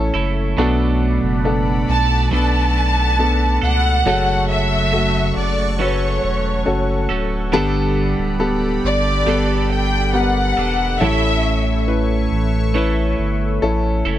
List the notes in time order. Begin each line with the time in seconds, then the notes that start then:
Already playing: A1 A3 B3 C#4 E4 A4 C#5 E5 C#6
0.14 F#1 A3 C#4 E4 A4
0.57 B1 B2 F#3 A3 B3 D4 A4 D5 F#5 B5
0.61 A4
1.23 F#1
1.45 B3 D4 A4
1.89 B1 A5
2.31 B1 F#3 A3 B3 D4 A4 B4 A5
3.18 B3 D4 A4
3.62 C#2 A3 D4 A4 F#5
4.05 F#1 F#2 C#3 F#3 A3 C#4 F#4 A4 C#6
4.10 A4
4.51 E5
4.92 A3 F#4 A4
5.36 F#1 D5
5.79 F#3 A3 C#4 F#4 A4 B4 C#5
6.24 E1
6.65 F#1 C#4 F#4 A4
7.09 D1 F#3 A3 C#4 A4
7.52 G1 G2 D3 G3 B3 D4 G4 A4 D5 B5
7.57 A4
8.19 D1
8.39 B3 G4 A4
8.84 G1 D5
9.26 G1 G3 B3 D4 G4 A4
9.72 G5
10.13 B3 G4 A#4 F#5
10.20 B4
10.57 E1 B3 D4 A4
11.00 A1 A2 E3 A3 C#4 E4 A4 C#5 E5 C#6
11.05 A4
11.87 C#4 E4 B4
12.32 A1
12.74 A3 C#4 E4 A4 B4
13.19 G1
13.62 A1 C#4 E4 A4
14.05 F#1 A3 C#4 E4 A4